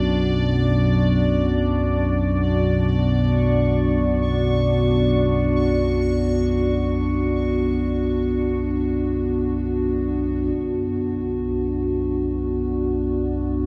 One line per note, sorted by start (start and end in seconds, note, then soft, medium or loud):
0.00 10.52 B1 medium
0.00 10.53 F#2 medium
0.00 13.66 B3 medium
0.00 10.57 D4 medium
0.00 13.66 D4 medium
0.00 13.66 F#4 medium
0.00 0.15 D5 medium
0.00 3.34 D5 medium
0.16 10.54 D5 medium
3.30 10.59 C#6 medium
10.53 13.66 B1 medium
10.53 13.66 F#2 medium
12.35 13.66 D5 medium